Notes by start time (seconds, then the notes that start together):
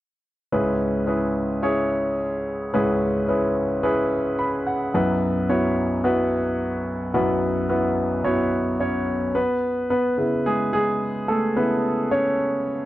0.52 C#2 G#2 C#4 E4 G#4 B4
1.07 C#4 E4 G#4 B4
1.62 C#4 E4 G#4 C#5
2.73 C#2 G#2 C#4 E4 G#4 B4
3.28 C#4 E4 G#4 B4
3.83 C#4 E4 G#4 B4
4.39 B5
4.67 F#5
4.94 B1 F#2 B3 E4 F#4 B4
5.49 B3 E4 F#4 C#5
6.04 B3 E4 F#4 B4
7.14 B1 F#2 B3 E4 F#4 B4
7.69 B3 E4 F#4 B4
8.24 B3 E4 F#4 C#5
8.80 C#4 C#5
9.35 B3 B4
9.90 B3 B4
10.18 C#3 B3 E4
10.46 G#3 G#4
10.73 G#3 G#4
11.28 A3 A4
11.56 C#3 B3 E4 B4
12.11 C#4 C#5